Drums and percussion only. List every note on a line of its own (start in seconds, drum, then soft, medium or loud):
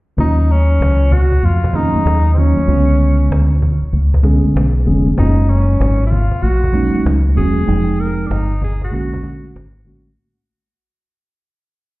0.18 cajon bass loud
0.50 high conga soft
0.50 shaker soft
0.82 cajon slap loud
1.11 cajon bass medium
1.11 low conga medium
1.11 shaker soft
1.32 cajon bass medium
1.43 high conga soft
1.43 shaker medium
1.64 cajon bass medium
1.73 cajon bass medium
1.93 cajon slap soft
1.93 high conga medium
1.93 shaker soft
2.07 cajon slap loud
2.25 shaker soft
2.37 low conga medium
2.37 shaker soft
2.57 high conga medium
2.57 shaker soft
3.00 high conga soft
3.00 shaker soft
3.20 shaker soft
3.32 cajon slap loud
3.52 shaker soft
3.62 cajon bass medium
3.62 low conga medium
3.62 shaker soft
3.81 cajon slap soft
3.81 shaker soft
3.93 cajon slap soft
3.93 high conga soft
3.93 shaker medium
4.12 cajon bass medium
4.12 shaker soft
4.23 cajon bass medium
4.23 shaker soft
4.43 high conga medium
4.43 shaker soft
4.55 cajon slap loud
4.55 shaker medium
4.75 shaker soft
4.87 low conga medium
4.87 shaker soft
5.06 cajon slap soft
5.06 high conga medium
5.06 shaker soft
5.17 cajon bass loud
5.17 shaker medium
5.49 high conga soft
5.49 shaker soft
5.69 shaker medium
5.81 cajon slap loud
6.11 cajon bass medium
6.11 low conga medium
6.11 shaker soft
6.31 cajon bass medium
6.31 shaker soft
6.42 high conga soft
6.42 shaker medium
6.62 cajon bass medium
6.62 shaker soft
6.73 cajon bass medium
6.93 high conga medium
6.93 shaker soft
7.05 cajon slap loud
7.05 shaker medium
7.25 shaker soft
7.37 low conga medium
7.37 shaker soft
7.57 high conga medium
7.57 shaker soft
7.68 shaker medium
7.99 cajon slap soft
7.99 high conga soft
7.99 shaker soft
8.31 cajon slap loud
8.61 cajon bass medium
8.61 low conga medium
8.61 shaker soft
8.81 cajon bass medium
8.92 cajon slap soft
9.14 cajon bass medium
9.23 cajon bass medium
9.44 high conga medium
9.44 shaker soft
9.56 cajon slap loud
9.56 shaker medium
9.76 shaker soft
9.87 low conga medium
9.87 shaker soft
10.07 high conga medium
10.07 shaker soft